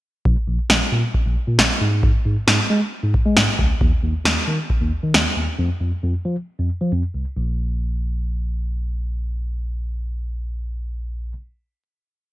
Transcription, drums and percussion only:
0.25 kick
0.70 snare
1.14 kick
1.59 snare
2.03 kick
2.48 snare
3.14 kick
3.37 snare
3.59 kick
3.81 kick
4.25 snare
4.70 kick
5.14 snare

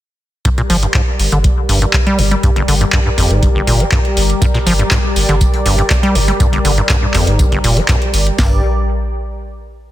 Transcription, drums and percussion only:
0.45 kick, closed hi-hat
0.58 closed hi-hat
0.70 open hi-hat
0.83 closed hi-hat
0.94 kick, clap, closed hi-hat
1.19 open hi-hat
1.32 closed hi-hat
1.44 kick, closed hi-hat
1.69 open hi-hat
1.82 closed hi-hat
1.93 kick, clap, closed hi-hat
2.07 closed hi-hat
2.19 open hi-hat
2.31 closed hi-hat
2.43 kick, closed hi-hat
2.56 closed hi-hat
2.68 open hi-hat
2.81 closed hi-hat
2.92 kick, clap, closed hi-hat
3.18 open hi-hat
3.31 closed hi-hat
3.43 kick, closed hi-hat
3.67 open hi-hat
3.80 closed hi-hat
3.92 kick, clap, closed hi-hat
4.05 closed hi-hat
4.17 open hi-hat
4.30 closed hi-hat
4.42 kick, closed hi-hat, tambourine
4.54 snare, closed hi-hat
4.66 open hi-hat, tambourine
4.79 closed hi-hat
4.91 kick, snare, clap, closed hi-hat, tambourine
5.16 open hi-hat, tambourine
5.29 snare, closed hi-hat
5.41 kick, closed hi-hat, tambourine
5.54 closed hi-hat
5.66 snare, open hi-hat
5.79 closed hi-hat
5.90 kick, snare, clap, closed hi-hat, tambourine
6.03 closed hi-hat
6.15 open hi-hat, tambourine
6.28 closed hi-hat
6.40 kick, closed hi-hat, tambourine
6.53 closed hi-hat
6.65 open hi-hat, tambourine
6.78 closed hi-hat
6.89 kick, snare, clap, closed hi-hat, tambourine
7.14 snare, clap, open hi-hat, tambourine
7.27 closed hi-hat
7.39 kick, closed hi-hat, tambourine
7.52 closed hi-hat
7.64 open hi-hat, tambourine
7.77 closed hi-hat
7.88 kick, snare, clap, closed hi-hat, tambourine
8.02 closed hi-hat
8.14 open hi-hat, tambourine
8.27 closed hi-hat
8.38 kick, snare, open hi-hat

